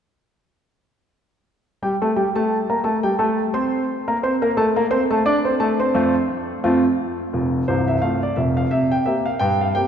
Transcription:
1.82 G3 G4 G5
2.02 A3 A4 A5
2.16 G3 G4 G5
2.36 A3 A4 A5
2.70 A#3 A#4 A#5
2.84 A3 A4 A5
3.03 G3 G4 G5
3.19 A3 A4 A5
3.54 C4 C5 C6
4.08 A#3 A#4 A#5
4.23 C4 C5 C6
4.42 A#3 A#4 A#5
4.57 A3 A4 A5
4.76 A#3 A#4 A#5
4.91 C4 C5 C6
5.10 A3 A4 A5
5.26 D4 D5 D6
5.45 C4 C5 C6
5.60 A3 A4 A5
5.80 C4 C5 C6
5.94 F2 A3 C4 F4
6.64 F2 A3 C4 F4
7.33 F1 F2
7.68 C1 C2 C5
7.88 E5
8.02 A3 C4 F4 F5
8.23 D5
8.36 F1 F2 E5
8.57 F5
8.71 C3 E5
8.92 G5
9.06 A#3 C4 G4 E5
9.26 F5
9.40 G2 G5
9.61 F5
9.75 A#3 C4 G4 G5

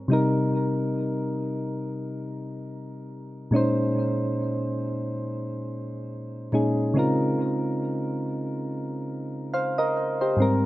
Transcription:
0.08 C3 G3 D#4
0.13 A#4
3.51 A#2 G#3 C#4 D#4
3.56 C5
6.52 A#2 G#3 C#4 D#4 G#4
6.94 C#3 G#3 C4 D#4 F4
6.99 A#4
9.54 C5 F5
9.78 A#4 D#5
10.21 G4 C5
10.37 G#2 G3 C4
10.42 A#4

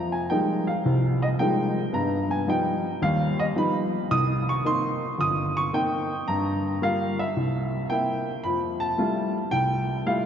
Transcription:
Already playing: F2 F3 A#5
0.12 G#5
0.30 F3 G3 G#3 A#3 D#4 G5
0.67 F5
0.85 C2 C3
1.22 D#5
1.39 F3 G3 G#3 A#3 D#4 G5
1.93 G2 B3 A#5
2.31 G#5
2.47 F3 G3 B3 D#4 G5
3.02 D#2 G3 F5
3.39 D#5
3.55 F3 G3 B3 D#4 B5
4.11 C2 D#6
4.49 C#6
4.64 A#3 C4 D#4 C6
5.18 G1 D#6
5.57 C#6
5.73 A#3 C4 D#4 G5
6.28 G2 A#5
6.82 G3 A#3 F4 F5
7.19 E5
7.36 C2
7.90 A#3 C4 E4 G5
8.44 F2 B5
8.80 A5
8.98 G3 A3 E4 F4
9.51 C2 G5
10.06 G3 A3 E4 F4 F5

